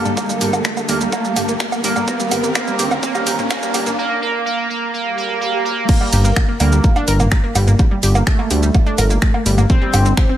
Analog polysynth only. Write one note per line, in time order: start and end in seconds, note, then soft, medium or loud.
0.00 0.15 A#3 medium
0.17 0.79 A#3 loud
0.89 1.11 A#3 medium
1.12 1.75 A#3 loud
1.84 2.06 A#3 loud
2.08 2.54 A#3 loud
2.55 3.01 A#3 loud
3.03 3.49 A#3 loud
3.51 3.96 A#3 loud
3.98 4.20 A#3 loud
4.22 4.44 A#3 loud
4.46 4.68 A#3 loud
4.70 4.92 A#3 loud
4.94 5.16 A#3 loud
5.17 5.39 A#3 loud
5.41 5.63 A#3 loud
5.65 5.87 A#3 loud
5.89 6.51 A#3 loud
6.60 7.22 A#3 loud
8.27 9.60 A3 loud
9.70 10.32 C4 loud